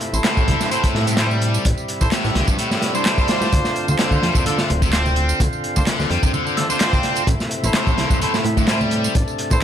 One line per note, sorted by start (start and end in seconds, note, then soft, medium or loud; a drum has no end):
0.00 3.49 C3 medium
0.00 1.63 A3 medium
0.00 3.49 E4 medium
0.00 closed hi-hat medium
0.13 0.20 A1 loud
0.13 0.69 E4 medium
0.13 0.69 A4 medium
0.13 0.69 C5 medium
0.13 tambourine medium
0.24 0.47 A2 loud
0.24 snare loud
0.24 clap loud
0.24 closed hi-hat medium
0.24 tambourine medium
0.37 0.44 A1 medium
0.37 kick loud
0.37 tambourine soft
0.48 0.56 C2 medium
0.48 0.60 D3 medium
0.48 kick loud
0.48 closed hi-hat medium
0.60 0.69 G2 medium
0.60 snare soft
0.60 tambourine medium
0.71 0.82 A2 medium
0.71 0.87 E4 medium
0.71 0.87 A4 medium
0.71 0.87 C5 loud
0.71 closed hi-hat medium
0.71 tambourine medium
0.83 1.06 A2 loud
0.83 kick medium
0.83 closed hi-hat medium
0.83 tambourine soft
0.95 1.59 A2 medium
0.95 snare soft
1.07 1.17 G2 loud
1.07 closed hi-hat medium
1.07 tambourine medium
1.17 1.64 G3 loud
1.17 1.28 E4 medium
1.17 1.28 A4 medium
1.17 1.28 C5 medium
1.17 snare loud
1.17 clap loud
1.17 closed hi-hat medium
1.17 tambourine medium
1.31 tambourine soft
1.42 closed hi-hat medium
1.54 tambourine medium
1.65 1.73 A1 loud
1.65 3.51 G3 medium
1.65 kick loud
1.65 closed hi-hat medium
1.65 tambourine medium
1.78 tambourine soft
1.88 closed hi-hat medium
2.01 2.08 A1 medium
2.01 2.10 E4 medium
2.01 2.10 A4 medium
2.01 2.10 C5 loud
2.01 kick loud
2.01 tambourine medium
2.12 2.34 A2 loud
2.12 snare loud
2.12 clap loud
2.12 closed hi-hat medium
2.12 tambourine medium
2.24 2.31 A1 medium
2.24 snare soft
2.24 tambourine soft
2.35 2.43 C2 medium
2.35 2.47 D3 medium
2.35 snare medium
2.35 closed hi-hat medium
2.48 2.56 G2 medium
2.48 kick medium
2.48 tambourine medium
2.58 2.70 A2 medium
2.58 closed hi-hat medium
2.58 tambourine medium
2.58 swell medium
2.71 2.94 A2 loud
2.71 snare soft
2.71 tambourine soft
2.82 snare soft
2.82 closed hi-hat medium
2.95 3.05 G2 loud
2.95 3.15 E4 medium
2.95 3.15 A4 medium
2.95 3.15 C5 loud
2.95 tambourine medium
3.06 3.51 G3 loud
3.06 snare loud
3.06 clap loud
3.06 closed hi-hat medium
3.06 tambourine medium
3.18 3.27 E4 loud
3.18 3.27 A4 medium
3.18 3.27 C5 loud
3.18 kick loud
3.18 tambourine soft
3.28 3.86 D4 loud
3.28 3.86 F4 medium
3.28 3.86 C5 loud
3.28 snare loud
3.28 closed hi-hat medium
3.41 3.48 A2 medium
3.41 snare soft
3.41 tambourine medium
3.52 3.61 D2 loud
3.52 7.24 D3 medium
3.52 7.24 C4 medium
3.52 7.24 F4 medium
3.52 kick loud
3.52 closed hi-hat medium
3.52 tambourine medium
3.65 snare medium
3.65 tambourine soft
3.76 closed hi-hat medium
3.88 3.96 D2 loud
3.88 4.44 D4 medium
3.88 4.44 F4 medium
3.88 4.44 C5 medium
3.88 tambourine medium
3.88 muted conga medium
3.88 high conga medium
3.99 4.22 D3 loud
3.99 snare loud
3.99 clap loud
3.99 closed hi-hat medium
3.99 tambourine medium
4.11 4.18 D2 medium
4.11 kick medium
4.11 tambourine soft
4.22 4.31 F2 medium
4.22 4.35 G3 medium
4.22 snare soft
4.22 closed hi-hat medium
4.22 muted conga medium
4.35 4.43 C3 medium
4.35 kick medium
4.35 tambourine medium
4.35 low conga loud
4.46 4.57 D3 medium
4.46 4.62 D4 medium
4.46 4.62 F4 medium
4.46 4.62 A4 loud
4.46 closed hi-hat medium
4.46 tambourine medium
4.46 high conga medium
4.46 low conga medium
4.58 4.69 D3 loud
4.58 snare medium
4.58 tambourine soft
4.70 5.34 D1 medium
4.70 closed hi-hat medium
4.70 muted conga medium
4.82 4.92 C3 loud
4.82 kick medium
4.82 tambourine medium
4.93 5.39 C4 loud
4.93 5.03 D4 medium
4.93 5.03 F4 medium
4.93 5.03 C5 medium
4.93 snare loud
4.93 clap loud
4.93 closed hi-hat medium
4.93 tambourine medium
5.06 tambourine soft
5.06 high conga medium
5.16 closed hi-hat medium
5.16 muted conga soft
5.29 tambourine medium
5.40 5.48 D2 loud
5.40 kick loud
5.40 closed hi-hat medium
5.40 tambourine medium
5.53 tambourine soft
5.64 closed hi-hat medium
5.76 5.83 D2 medium
5.76 5.85 D4 medium
5.76 5.85 F4 medium
5.76 5.84 C5 medium
5.76 kick medium
5.76 tambourine medium
5.76 muted conga medium
5.76 high conga medium
5.87 6.09 D3 loud
5.87 snare loud
5.87 clap loud
5.87 closed hi-hat loud
5.87 tambourine medium
6.00 6.06 D2 medium
6.00 snare soft
6.00 tambourine soft
6.10 6.18 F2 medium
6.10 6.22 G3 medium
6.10 closed hi-hat medium
6.10 muted conga medium
6.23 6.31 C3 medium
6.23 kick medium
6.23 tambourine medium
6.23 low conga loud
6.33 6.45 D3 medium
6.33 tambourine medium
6.33 high conga medium
6.33 low conga medium
6.46 6.57 D3 loud
6.46 tambourine soft
6.57 6.67 D4 medium
6.57 6.67 F4 medium
6.57 6.67 A4 medium
6.57 snare soft
6.57 closed hi-hat medium
6.70 6.80 C3 loud
6.70 7.26 D4 loud
6.70 7.26 F4 medium
6.70 7.26 C5 loud
6.70 tambourine medium
6.70 muted conga medium
6.80 7.26 C4 loud
6.80 snare loud
6.80 clap loud
6.80 closed hi-hat medium
6.80 tambourine medium
6.93 kick medium
6.93 tambourine soft
6.93 high conga loud
7.03 snare soft
7.03 closed hi-hat medium
7.16 closed hi-hat soft
7.16 tambourine medium
7.16 muted conga soft
7.27 7.35 A1 loud
7.27 9.64 C3 medium
7.27 9.64 A3 medium
7.27 9.13 E4 medium
7.27 kick loud
7.27 closed hi-hat medium
7.27 tambourine medium
7.40 snare soft
7.40 tambourine soft
7.51 closed hi-hat medium
7.63 7.70 A1 loud
7.63 8.19 E4 medium
7.63 8.19 A4 medium
7.63 8.19 C5 medium
7.63 tambourine medium
7.63 muted conga medium
7.63 high conga loud
7.74 7.97 A2 loud
7.74 snare loud
7.74 clap loud
7.74 closed hi-hat medium
7.74 tambourine medium
7.87 7.94 A1 medium
7.87 kick loud
7.87 tambourine soft
7.98 8.06 C2 medium
7.98 8.10 D3 medium
7.98 snare soft
7.98 closed hi-hat medium
7.98 muted conga medium
8.10 8.18 G2 medium
8.10 kick loud
8.10 tambourine medium
8.10 low conga medium
8.21 8.33 A2 medium
8.21 8.37 E4 loud
8.21 8.37 A4 medium
8.21 8.37 C5 loud
8.21 closed hi-hat medium
8.21 tambourine medium
8.21 high conga medium
8.21 low conga medium
8.34 8.44 A2 loud
8.34 snare medium
8.34 tambourine soft
8.45 9.09 A2 medium
8.45 closed hi-hat medium
8.45 muted conga medium
8.57 8.67 G2 loud
8.57 kick medium
8.57 tambourine medium
8.67 9.14 G3 loud
8.67 8.78 E4 medium
8.67 8.78 A4 medium
8.67 8.78 C5 medium
8.67 snare loud
8.67 clap loud
8.67 closed hi-hat medium
8.67 tambourine medium
8.81 tambourine soft
8.81 high conga medium
8.91 closed hi-hat medium
8.91 muted conga soft
9.04 tambourine medium
9.15 9.23 A1 loud
9.15 9.64 D4 medium
9.15 kick loud
9.15 closed hi-hat medium
9.15 tambourine medium
9.28 tambourine soft
9.38 closed hi-hat medium
9.50 9.58 A1 loud
9.50 9.60 E4 medium
9.50 9.60 A4 medium
9.50 9.60 C5 loud
9.50 kick loud
9.50 tambourine medium
9.50 muted conga medium
9.50 high conga loud